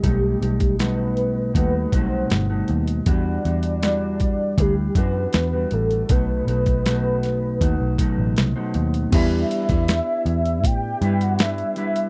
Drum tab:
CC |----------------|----------------|----------------|x---------------|
HH |x-xxx-x-x-x-x-xx|x-xxx-x-x-x-x-xx|x-xxx-x-x-x-x-xx|x-xxx-xxx-xxxxxx|
SD |----o-------o---|----o-------o---|----o-o-----o---|----o-------o---|
BD |o--o----o-o-----|o-----o-o-o-----|o--o----o-o-----|o--o----o-------|